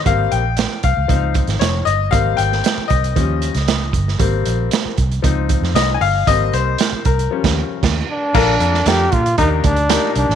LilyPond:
<<
  \new Staff \with { instrumentName = "Trombone" } { \time 4/4 \key aes \major \tempo 4 = 116 r1 | r1 | r1 | r2. r8 d'8~ |
\key bes \major d'4 g'8 f'8 ees'8 d'4 d'8 | }
  \new Staff \with { instrumentName = "Upright piano" } { \time 4/4 \key aes \major f''8 g''4 f''4 r8 des''8 ees''8 | f''8 g''4 ees''2~ ees''8 | r2. ees''16. aes''32 f''8 | ees''8 c''4 bes'2~ bes'8 |
\key bes \major <bes d' f' a' bes'>8 <bes d' f' a' bes'>8 <bes d' f' a' bes'>8 r8 <bes d' ees' g' bes'>8 r8 <bes d' ees' g' bes'>8 r8 | }
  \new Staff \with { instrumentName = "Upright piano" } { \time 4/4 \key aes \major <g bes c'>8 r4. <f c' ees'>4. r8 | <g bes c'>2 <f g des'>8 r4. | <g bes c'>4. r8 <f c' ees'>4. r8 | <g bes c'>4. r8 <f g des'>4. r8 |
\key bes \major r1 | }
  \new Staff \with { instrumentName = "Fingered electric bass" } { \clef bass \time 4/4 \key aes \major aes,,8 bes,,8. r16 c,16 des,16 des,8. aes,,16 f,,8 g,,8 | aes,,8 aes,,8 r8 c,8 ees,8. des,8. g,,8 | aes,,8 bes,,8 r8 c,8 des,8. f,16 c,8 g,,8 | aes,,8 c,8 r8 c,8 r16 ees,8 r16 ees,8 r8 |
\key bes \major bes,,8 f,8 f,8 bes,8 ees,8 d,8. r16 c,16 a,,16 | }
  \new DrumStaff \with { instrumentName = "Drums" } \drummode { \time 4/4 <hh bd>8 hh8 <hh sn>8 <hh bd>8 <hh bd>8 <hh bd>16 <hh sn>16 <hh sn>8 hh8 | <hh bd>8 hh16 sn16 <hh sn>8 <hh bd>16 hh16 <hh bd>8 hh16 <hh sn>16 <hh sn>8 <hh bd>16 sn16 | <hh bd>8 hh8 <hh sn>8 <hh bd>16 hh16 <hh bd>8 <hh bd>16 sn16 <hh sn>8 hho8 | <hh bd>8 hh8 <hh sn>8 <hh bd>16 hh16 r16 <cymc bd sn>8. <cymc bd sn>4 |
<cymc bd>8 hh16 sn16 <hh sn>8 <hh bd>16 hh16 <hh bd>8 <hh bd>16 hh16 <hh sn>8 hh16 sn16 | }
>>